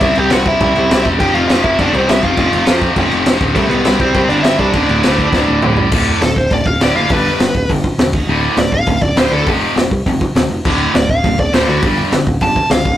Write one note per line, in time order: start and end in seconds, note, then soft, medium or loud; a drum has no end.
0.01 0.12 C2 loud
0.01 0.30 C3 medium
0.01 0.29 G3 loud
0.01 0.29 C4 loud
0.01 0.16 E4 medium
0.01 0.18 E5 loud
0.01 kick loud
0.01 crash loud
0.15 0.28 C2 medium
0.15 0.31 G4 medium
0.15 0.32 G5 loud
0.15 crash medium
0.29 0.53 C2 loud
0.29 0.59 C3 medium
0.29 0.59 G3 medium
0.29 0.60 C4 loud
0.29 0.46 F#4 medium
0.29 0.48 F#5 loud
0.29 snare loud
0.29 crash loud
0.46 1.02 E4 medium
0.46 1.06 E5 loud
0.46 kick medium
0.46 crash medium
0.60 0.72 C2 loud
0.60 0.91 C3 loud
0.60 0.91 G3 loud
0.60 0.90 C4 loud
0.60 kick loud
0.60 crash medium
0.76 0.88 C2 medium
0.76 crash medium
0.91 1.02 C2 loud
0.91 1.19 C3 medium
0.91 1.19 G3 medium
0.91 1.20 C4 medium
0.91 snare loud
0.91 crash medium
1.05 1.16 E1 medium
1.05 kick medium
1.05 crash medium
1.19 1.31 F1 loud
1.19 1.50 F2 medium
1.19 1.48 C3 loud
1.19 1.49 F3 loud
1.19 1.33 G4 medium
1.19 1.34 G5 medium
1.19 kick loud
1.19 crash medium
1.34 1.46 F1 medium
1.34 1.47 F4 medium
1.34 1.47 F5 loud
1.34 crash medium
1.48 1.61 F1 loud
1.48 1.77 F2 medium
1.48 1.78 C3 medium
1.48 1.79 F3 loud
1.48 1.63 F4 medium
1.48 1.63 F5 loud
1.48 snare loud
1.48 crash medium
1.64 1.75 F1 medium
1.64 1.78 E4 medium
1.64 1.78 E5 medium
1.64 kick medium
1.64 crash medium
1.79 1.90 F1 loud
1.79 2.07 F2 medium
1.79 2.06 C3 medium
1.79 2.06 F3 loud
1.79 1.94 D4 medium
1.79 1.96 D5 loud
1.79 kick loud
1.79 crash medium
1.94 2.05 C2 loud
1.94 2.09 C4 medium
1.94 2.10 C5 loud
1.94 crash medium
2.07 2.19 C2 loud
2.07 2.36 F2 medium
2.07 2.37 C3 medium
2.07 2.37 F3 medium
2.07 2.23 E4 medium
2.07 2.23 E5 medium
2.07 snare loud
2.07 crash medium
2.23 2.34 F1 loud
2.23 2.79 F4 medium
2.23 2.78 F5 medium
2.23 kick medium
2.23 crash medium
2.37 2.49 F1 loud
2.37 2.66 F2 medium
2.37 2.66 C3 medium
2.37 2.65 F3 loud
2.37 kick loud
2.37 crash medium
2.53 2.64 F1 medium
2.53 crash medium
2.66 2.96 F2 medium
2.66 2.90 F2 medium
2.66 2.97 C3 medium
2.66 2.97 F3 loud
2.66 snare loud
2.66 crash medium
2.81 kick medium
2.81 crash medium
2.96 3.08 F1 loud
2.96 3.26 F2 loud
2.96 3.26 C3 loud
2.96 3.25 F3 loud
2.96 kick loud
2.96 crash medium
3.11 3.23 F1 loud
3.11 crash medium
3.26 3.37 F1 loud
3.26 3.55 F2 medium
3.26 3.54 C3 medium
3.26 3.55 F3 medium
3.26 snare loud
3.26 crash loud
3.41 3.52 D1 medium
3.41 kick medium
3.41 crash medium
3.55 3.67 C2 loud
3.55 3.85 C3 medium
3.55 3.85 G3 loud
3.55 3.70 A3 medium
3.55 3.84 C4 loud
3.55 3.70 A4 loud
3.55 kick loud
3.55 crash medium
3.70 3.81 C2 loud
3.70 3.98 B3 medium
3.70 4.00 B4 medium
3.70 crash medium
3.85 3.97 C2 loud
3.85 4.13 C3 medium
3.85 4.13 G3 loud
3.85 4.14 C4 loud
3.85 snare loud
3.85 crash medium
4.00 4.11 C2 medium
4.00 4.28 C4 medium
4.00 4.28 C5 medium
4.00 kick medium
4.00 crash medium
4.14 4.26 C2 loud
4.14 4.43 C3 medium
4.14 4.43 G3 loud
4.14 4.42 C4 loud
4.14 kick loud
4.14 crash medium
4.29 4.41 G1 loud
4.29 4.43 D4 medium
4.29 4.45 D5 loud
4.29 crash medium
4.43 4.56 G1 medium
4.43 4.73 C3 medium
4.43 4.73 G3 medium
4.43 4.72 C4 medium
4.43 4.58 E4 medium
4.43 4.59 E5 loud
4.43 snare loud
4.43 crash medium
4.58 4.70 C2 loud
4.58 5.58 D4 medium
4.58 5.58 D5 medium
4.58 kick medium
4.58 crash medium
4.73 4.85 D1 loud
4.73 5.03 D2 medium
4.73 5.03 A2 loud
4.73 5.02 D3 loud
4.73 kick loud
4.73 crash loud
4.89 5.00 D1 loud
4.89 crash medium
5.03 5.32 D2 medium
5.03 5.26 D2 loud
5.03 5.32 A2 loud
5.03 5.33 D3 loud
5.03 snare loud
5.03 crash loud
5.18 kick medium
5.18 crash medium
5.32 5.44 D1 loud
5.32 5.62 D2 loud
5.32 5.61 A2 loud
5.32 5.61 D3 loud
5.32 kick loud
5.32 snare medium
5.48 5.59 D1 medium
5.62 5.74 D1 loud
5.62 5.90 D2 medium
5.62 5.90 A2 medium
5.62 5.91 D3 medium
5.62 mid tom loud
5.76 5.88 C2 medium
5.76 floor tom medium
5.91 6.11 D1 loud
5.91 6.20 D2 medium
5.91 6.21 A2 medium
5.91 6.21 D3 loud
5.91 kick loud
5.91 crash loud
6.21 6.31 D1 medium
6.21 6.35 D2 medium
6.21 6.35 A2 medium
6.21 6.36 A4 medium
6.21 snare loud
6.21 open hi-hat medium
6.36 6.46 D1 medium
6.36 6.53 C5 medium
6.36 kick medium
6.51 6.60 D1 loud
6.51 6.65 D2 medium
6.51 6.65 A2 medium
6.51 6.66 D5 medium
6.51 kick medium
6.51 open hi-hat medium
6.66 6.75 D1 medium
6.66 6.81 F5 medium
6.66 kick medium
6.80 6.90 D1 medium
6.80 7.09 D2 medium
6.80 7.10 A2 medium
6.80 7.10 D3 medium
6.80 6.96 D5 medium
6.80 snare loud
6.80 open hi-hat medium
6.95 7.05 F#1 medium
6.95 7.10 F5 medium
7.09 7.29 G1 medium
7.09 7.39 G2 medium
7.09 7.39 D3 medium
7.09 7.40 G3 medium
7.09 7.69 B4 loud
7.09 kick loud
7.09 open hi-hat medium
7.40 7.50 G1 medium
7.40 7.53 G2 medium
7.40 7.53 D3 medium
7.40 snare loud
7.40 open hi-hat medium
7.55 7.64 D1 medium
7.55 kick medium
7.70 7.89 G1 loud
7.70 7.83 G2 medium
7.70 7.84 D3 medium
7.70 kick loud
7.70 open hi-hat medium
7.84 kick medium
7.98 8.13 E1 loud
7.98 8.13 G2 medium
7.98 8.13 D3 medium
7.98 snare loud
7.98 open hi-hat medium
8.13 8.23 D1 medium
8.13 kick loud
8.13 crash medium
8.27 8.46 D1 loud
8.27 8.57 D2 medium
8.27 8.57 A2 medium
8.27 8.58 D3 medium
8.57 8.67 D1 loud
8.57 8.71 D2 medium
8.57 8.72 A2 medium
8.57 8.73 D5 loud
8.57 snare loud
8.57 open hi-hat medium
8.72 8.82 D1 loud
8.72 9.02 F5 medium
8.72 kick medium
8.86 8.97 D1 loud
8.86 9.01 D2 medium
8.86 9.01 A2 medium
8.86 kick loud
8.86 open hi-hat medium
9.02 9.11 D1 loud
9.02 9.18 D5 medium
9.02 kick medium
9.16 9.26 D1 loud
9.16 9.46 D2 medium
9.16 9.46 A2 medium
9.16 9.46 D3 medium
9.16 9.32 C5 medium
9.16 snare loud
9.16 open hi-hat medium
9.32 9.41 D2 medium
9.32 9.47 A4 loud
9.46 9.66 F1 loud
9.46 9.75 F2 medium
9.46 9.76 C3 medium
9.46 9.76 F3 loud
9.46 kick loud
9.46 open hi-hat medium
9.76 9.86 F1 loud
9.76 9.90 F2 medium
9.76 9.90 C3 medium
9.76 snare loud
9.76 open hi-hat medium
9.91 10.01 C2 medium
9.91 kick medium
10.06 10.25 F1 loud
10.06 10.20 F2 medium
10.06 10.20 C3 medium
10.06 kick medium
10.06 open hi-hat medium
10.21 kick medium
10.35 10.45 D1 medium
10.35 10.49 F2 medium
10.35 10.49 C3 medium
10.35 snare loud
10.35 open hi-hat medium
10.50 10.59 F1 medium
10.65 10.84 D1 medium
10.65 10.94 D2 medium
10.65 10.94 A2 medium
10.65 10.95 D3 medium
10.65 kick loud
10.65 crash loud
10.94 11.04 D1 medium
10.94 11.08 D2 medium
10.94 11.08 A2 loud
10.94 11.10 D5 medium
10.94 snare loud
10.94 open hi-hat medium
11.09 11.19 D1 medium
11.09 11.38 F5 medium
11.09 kick medium
11.24 11.33 D1 loud
11.24 11.38 D2 medium
11.24 11.38 A2 medium
11.24 kick loud
11.24 open hi-hat medium
11.39 11.48 D1 medium
11.39 11.54 D5 loud
11.39 kick medium
11.53 11.63 D1 loud
11.53 11.82 D2 medium
11.53 11.82 A2 medium
11.53 11.82 D3 medium
11.53 11.68 C5 medium
11.53 snare loud
11.53 open hi-hat medium
11.68 11.77 D2 medium
11.68 11.83 F#4 medium
11.82 12.01 G1 medium
11.82 12.12 G2 medium
11.82 12.12 D3 loud
11.82 12.12 G3 medium
11.82 kick loud
11.82 open hi-hat medium
12.12 12.22 G1 medium
12.12 12.26 G2 medium
12.12 12.26 D3 medium
12.12 snare loud
12.12 open hi-hat medium
12.27 12.36 D1 loud
12.27 kick medium
12.40 12.60 G1 loud
12.40 12.55 G2 medium
12.40 12.56 D3 medium
12.40 12.71 A5 loud
12.40 kick loud
12.40 open hi-hat medium
12.56 kick medium
12.70 12.80 C#2 medium
12.70 12.85 G2 medium
12.70 12.85 D3 medium
12.70 12.97 F5 medium
12.70 snare loud
12.70 open hi-hat medium
12.85 12.95 D1 medium
12.85 kick loud